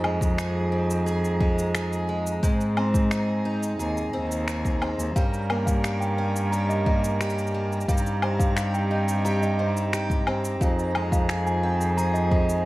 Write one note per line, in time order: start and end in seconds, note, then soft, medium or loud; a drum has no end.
0.00 2.33 F2 medium
0.00 2.42 F2 medium
0.00 2.40 F3 medium
0.00 1.40 G#3 medium
0.00 0.72 D#4 medium
0.00 5.12 D#4 medium
0.00 2.40 G#4 medium
0.00 12.65 A#5 medium
0.04 low woodblock medium
0.21 kick loud
0.21 shaker medium
0.38 1.06 G#4 medium
0.38 finger snap medium
0.38 shaker medium
0.72 2.77 C4 medium
0.91 shaker medium
1.06 1.74 G#4 medium
1.06 shaker medium
1.25 shaker soft
1.40 2.08 G#3 medium
1.40 kick loud
1.59 shaker medium
1.75 3.11 G#4 medium
1.75 finger snap loud
1.75 shaker medium
1.93 shaker soft
2.09 2.76 G#3 medium
2.27 shaker medium
2.43 5.15 G#2 medium
2.43 3.70 G#2 medium
2.43 5.13 G#3 medium
2.43 5.13 C4 medium
2.43 kick loud
2.43 shaker medium
2.61 shaker soft
2.77 4.12 C4 medium
2.77 low woodblock medium
2.94 kick medium
2.94 shaker medium
3.11 3.78 G#4 medium
3.11 finger snap medium
3.11 shaker soft
3.45 5.22 D#4 medium
3.63 shaker medium
3.79 4.02 D#2 medium
3.79 4.46 G#4 medium
3.79 shaker medium
3.97 shaker soft
4.13 4.89 D#2 medium
4.13 4.81 C4 medium
4.32 shaker medium
4.48 5.22 G#4 medium
4.48 finger snap medium
4.48 shaker medium
4.65 kick medium
4.65 shaker soft
4.82 5.23 C4 medium
4.82 low woodblock medium
4.98 5.10 D#2 medium
4.98 shaker medium
5.15 7.79 G2 medium
5.15 7.85 G3 medium
5.15 7.88 G3 medium
5.15 7.86 C#4 medium
5.15 7.86 A#4 medium
5.15 5.32 F5 medium
5.15 kick loud
5.15 shaker medium
5.34 shaker soft
5.50 6.85 A#3 medium
5.50 low woodblock medium
5.66 5.83 F5 medium
5.66 kick medium
5.66 shaker medium
5.84 6.52 G4 medium
5.84 6.00 F5 medium
5.84 finger snap medium
5.84 shaker soft
6.00 6.17 G5 medium
6.00 shaker soft
6.18 7.95 C#4 medium
6.36 shaker medium
6.51 7.20 G4 medium
6.51 6.68 A#5 medium
6.51 shaker soft
6.69 6.85 D#5 medium
6.69 shaker soft
6.86 7.53 A#3 medium
6.86 6.96 D#5 medium
6.86 kick loud
7.04 shaker medium
7.21 8.56 G4 medium
7.21 finger snap medium
7.21 shaker soft
7.30 shaker soft
7.38 shaker soft
7.47 shaker soft
7.54 7.95 A#3 medium
7.72 shaker soft
7.81 shaker soft
7.88 10.52 G2 loud
7.88 10.61 G3 medium
7.88 10.58 C4 medium
7.88 12.65 D#4 medium
7.88 10.58 G4 medium
7.88 8.04 F5 medium
7.88 kick loud
7.88 shaker medium
7.98 shaker medium
8.06 shaker soft
8.22 9.59 C4 medium
8.22 low woodblock medium
8.39 8.55 F5 medium
8.39 kick medium
8.39 shaker medium
8.56 9.23 G4 medium
8.56 8.72 F5 medium
8.56 finger snap medium
8.56 shaker soft
8.74 8.90 G5 loud
8.74 shaker soft
8.91 11.63 D#4 medium
9.08 shaker medium
9.25 9.92 G4 medium
9.25 9.41 A#5 medium
9.25 shaker soft
9.42 9.58 D#5 loud
9.42 shaker soft
9.59 10.27 C4 medium
9.59 9.69 D#5 medium
9.77 shaker medium
9.93 10.68 G4 medium
9.93 finger snap medium
9.93 shaker medium
10.10 kick medium
10.10 shaker soft
10.27 10.95 C4 medium
10.27 low woodblock medium
10.45 shaker medium
10.61 12.65 F2 medium
10.61 12.65 F3 medium
10.61 12.65 G#4 medium
10.61 10.77 F5 medium
10.61 kick loud
10.61 shaker medium
10.79 shaker soft
10.95 12.31 G#3 medium
10.95 low woodblock medium
11.12 11.28 F5 medium
11.12 kick medium
11.12 shaker medium
11.29 11.97 G#4 medium
11.29 finger snap medium
11.29 shaker soft
11.46 11.63 G#5 loud
11.46 shaker soft
11.63 12.65 C4 medium
11.81 shaker medium
11.97 12.65 G#4 medium
11.97 12.13 A#5 medium
11.97 shaker soft
12.14 12.29 D#5 loud
12.14 shaker soft
12.30 12.65 G#3 medium
12.30 12.41 D#5 medium
12.30 kick loud
12.49 shaker medium